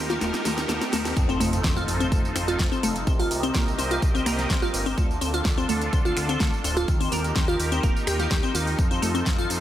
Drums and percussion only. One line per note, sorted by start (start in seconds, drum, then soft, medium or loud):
0.10 snare medium
0.10 tambourine soft
0.21 snare loud
0.21 closed hi-hat medium
0.21 tambourine soft
0.34 snare medium
0.34 closed hi-hat soft
0.34 tambourine soft
0.45 snare loud
0.45 open hi-hat loud
0.45 tambourine medium
0.58 snare loud
0.58 closed hi-hat soft
0.58 tambourine soft
0.69 snare loud
0.69 closed hi-hat medium
0.69 tambourine soft
0.81 snare loud
0.81 closed hi-hat soft
0.81 tambourine soft
0.93 snare loud
0.93 open hi-hat loud
0.93 tambourine medium
1.05 snare medium
1.05 open hi-hat medium
1.05 tambourine soft
1.17 kick loud
1.17 closed hi-hat medium
1.17 tambourine soft
1.30 tambourine soft
1.41 open hi-hat loud
1.41 tambourine medium
1.53 closed hi-hat medium
1.53 tambourine soft
1.64 kick loud
1.64 snare loud
1.64 closed hi-hat medium
1.64 tambourine soft
1.77 tambourine soft
1.88 open hi-hat loud
1.88 tambourine medium
2.01 closed hi-hat medium
2.01 tambourine soft
2.12 kick loud
2.12 closed hi-hat medium
2.12 tambourine soft
2.25 tambourine soft
2.36 finger snap medium
2.36 open hi-hat loud
2.36 tambourine medium
2.48 closed hi-hat medium
2.48 tambourine soft
2.59 kick loud
2.59 snare loud
2.59 closed hi-hat medium
2.59 tambourine soft
2.73 tambourine soft
2.83 open hi-hat loud
2.83 tambourine medium
2.96 closed hi-hat medium
2.96 tambourine soft
3.07 kick loud
3.07 closed hi-hat medium
3.07 tambourine soft
3.20 open hi-hat medium
3.20 tambourine soft
3.31 open hi-hat loud
3.31 tambourine medium
3.43 closed hi-hat medium
3.43 tambourine soft
3.55 kick loud
3.55 snare loud
3.55 closed hi-hat medium
3.55 tambourine soft
3.68 tambourine soft
3.79 open hi-hat loud
3.79 tambourine medium
3.91 closed hi-hat medium
3.91 tambourine soft
4.02 kick loud
4.02 closed hi-hat medium
4.02 tambourine soft
4.16 tambourine soft
4.26 finger snap medium
4.26 open hi-hat loud
4.26 tambourine medium
4.39 snare soft
4.39 closed hi-hat medium
4.39 tambourine soft
4.50 kick loud
4.50 snare loud
4.50 closed hi-hat medium
4.50 tambourine soft
4.63 tambourine soft
4.74 open hi-hat loud
4.74 tambourine medium
4.86 open hi-hat medium
4.86 tambourine soft
4.98 kick loud
4.98 closed hi-hat medium
4.98 tambourine soft
5.11 tambourine soft
5.21 open hi-hat loud
5.21 tambourine medium
5.34 closed hi-hat medium
5.34 tambourine soft
5.45 kick loud
5.45 snare loud
5.45 closed hi-hat medium
5.45 tambourine soft
5.58 tambourine soft
5.69 open hi-hat loud
5.69 tambourine medium
5.82 closed hi-hat medium
5.82 tambourine soft
5.93 kick loud
5.93 closed hi-hat medium
5.93 tambourine soft
6.06 tambourine soft
6.17 finger snap medium
6.17 open hi-hat loud
6.17 tambourine medium
6.29 closed hi-hat medium
6.29 tambourine soft
6.40 kick loud
6.40 snare loud
6.40 closed hi-hat medium
6.40 tambourine soft
6.54 tambourine soft
6.64 open hi-hat loud
6.64 tambourine medium
6.77 closed hi-hat medium
6.77 tambourine soft
6.88 kick loud
6.88 closed hi-hat medium
6.88 tambourine soft
7.01 open hi-hat medium
7.01 tambourine soft
7.12 open hi-hat loud
7.12 tambourine medium
7.24 closed hi-hat medium
7.24 tambourine soft
7.36 kick loud
7.36 snare loud
7.36 closed hi-hat medium
7.36 tambourine soft
7.49 tambourine soft
7.60 open hi-hat loud
7.60 tambourine medium
7.72 closed hi-hat medium
7.72 tambourine soft
7.83 kick loud
7.83 closed hi-hat medium
7.83 tambourine soft
7.96 tambourine soft
8.07 finger snap medium
8.07 open hi-hat loud
8.07 tambourine medium
8.19 snare soft
8.19 closed hi-hat medium
8.19 tambourine soft
8.31 kick loud
8.31 snare loud
8.31 closed hi-hat soft
8.31 tambourine soft
8.44 tambourine soft
8.55 open hi-hat loud
8.55 tambourine medium
8.67 open hi-hat medium
8.67 tambourine soft
8.79 kick loud
8.79 closed hi-hat medium
8.79 tambourine soft
8.92 tambourine soft
9.03 open hi-hat loud
9.03 tambourine medium
9.15 closed hi-hat medium
9.15 tambourine soft
9.26 kick loud
9.26 snare loud
9.26 closed hi-hat medium
9.26 tambourine soft
9.39 tambourine soft
9.50 open hi-hat loud
9.50 tambourine medium